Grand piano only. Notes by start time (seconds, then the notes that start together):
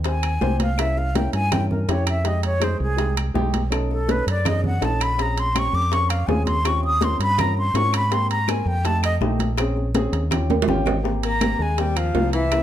0.05 C4 G4 C5
0.41 C4 G4 C5
0.77 C#4 E4 A#4
1.15 C#4 E4 A#4
1.52 C#4 E4 A#4
1.88 C#4 E4 G4
2.24 G#3 D#4 G4
2.60 G#3 D#4 G#4
2.97 G#3 D#4 G4
3.34 G#3 D#4 G4
3.70 C#4 D#4 A4
4.07 C#4 D#4 A4
4.45 C#4 D#4 G#4
4.81 C#4 D#4 A4
5.18 C4 C#4 G#4
5.54 C4 C#4 G4
5.91 C4 C#4 A#4
6.28 C4 C#4 G#4
6.65 C4 C#4 F4 G4
7.02 C4 C#4 F4 A#4
7.38 C4 C#4 F4 A#4
7.75 C4 C#4 F4 A#4
8.10 A#3 C4 G4
8.47 A#3 C4 A#4
8.85 A3 D#4 G4
9.21 A3 D#4 G4
9.59 C4 C#4 G#4
9.95 C4 C#4 G#4
10.32 C#4 F4 G4
10.51 G5
10.68 C#4 F4 G4 F5
10.86 D#5
11.03 A#3 C4 G4
11.41 A#3 C4 G4
11.78 A#3 C4 G4
12.15 A#3 C4 F4
12.52 A#3 C#4 E4